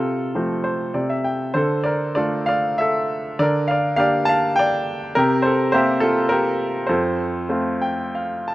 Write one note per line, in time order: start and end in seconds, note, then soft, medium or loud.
0.00 0.91 C3 medium
0.00 1.21 F4 medium
0.00 1.20 A4 medium
0.35 0.93 F3 soft
0.35 0.93 A3 soft
0.35 0.93 C4 soft
0.64 0.92 C5 medium
0.94 1.53 C3 medium
0.94 1.09 D5 soft
1.10 1.24 E5 soft
1.24 1.53 G5 soft
1.54 3.35 D3 medium
1.54 1.85 A4 medium
1.54 1.86 C5 medium
1.84 2.15 A#4 soft
1.84 2.13 D5 medium
2.15 2.77 A3 soft
2.15 2.77 D4 soft
2.15 2.77 F4 soft
2.15 2.46 A4 medium
2.15 2.47 D5 medium
2.46 2.77 D5 medium
2.46 2.79 F5 medium
2.78 3.23 A4 medium
2.78 3.21 E5 medium
3.39 5.13 D3 medium
3.39 3.69 A#4 medium
3.39 3.69 D5 medium
3.68 3.98 D5 medium
3.68 3.95 F5 medium
3.96 4.56 A#3 soft
3.96 4.56 D4 soft
3.96 4.56 G4 medium
3.96 4.27 D5 medium
3.96 4.27 F5 medium
4.25 4.57 F5 medium
4.25 4.58 A5 medium
4.56 5.00 D5 medium
4.56 4.98 G5 medium
5.15 6.86 C3 medium
5.15 5.45 G4 medium
5.15 5.46 A#4 medium
5.42 5.73 A4 medium
5.42 5.71 C5 medium
5.72 6.30 A#3 medium
5.72 6.31 C4 soft
5.72 6.01 G4 medium
5.72 6.03 C5 medium
5.72 6.31 E5 medium
6.00 6.30 F4 medium
6.00 6.32 A4 medium
6.29 6.86 G4 medium
6.29 6.90 A#4 medium
6.87 8.55 F2 medium
6.87 8.10 A4 medium
6.87 8.09 C5 medium
7.49 8.12 A3 soft
7.49 8.12 C4 soft
7.49 8.12 F4 soft
7.81 8.12 G5 medium
8.15 8.45 F5 soft
8.48 8.55 A5 medium